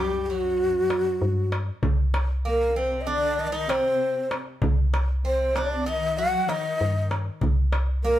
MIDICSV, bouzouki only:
0, 0, Header, 1, 2, 480
1, 0, Start_track
1, 0, Tempo, 620861
1, 1419, Time_signature, 9, 3, 24, 8
1, 6333, End_track
2, 0, Start_track
2, 0, Title_t, "Bouzouki"
2, 0, Program_c, 0, 25
2, 0, Note_on_c, 0, 55, 65
2, 227, Note_off_c, 0, 55, 0
2, 230, Note_on_c, 0, 54, 57
2, 1154, Note_off_c, 0, 54, 0
2, 1895, Note_on_c, 0, 58, 62
2, 2132, Note_off_c, 0, 58, 0
2, 2135, Note_on_c, 0, 60, 65
2, 2371, Note_on_c, 0, 62, 75
2, 2384, Note_off_c, 0, 60, 0
2, 2720, Note_off_c, 0, 62, 0
2, 2723, Note_on_c, 0, 63, 77
2, 2852, Note_on_c, 0, 60, 64
2, 2861, Note_off_c, 0, 63, 0
2, 3305, Note_off_c, 0, 60, 0
2, 4058, Note_on_c, 0, 60, 61
2, 4302, Note_on_c, 0, 62, 67
2, 4305, Note_off_c, 0, 60, 0
2, 4530, Note_off_c, 0, 62, 0
2, 4533, Note_on_c, 0, 63, 72
2, 4778, Note_off_c, 0, 63, 0
2, 4781, Note_on_c, 0, 66, 78
2, 5017, Note_off_c, 0, 66, 0
2, 5020, Note_on_c, 0, 63, 70
2, 5468, Note_off_c, 0, 63, 0
2, 6220, Note_on_c, 0, 58, 72
2, 6333, Note_off_c, 0, 58, 0
2, 6333, End_track
0, 0, End_of_file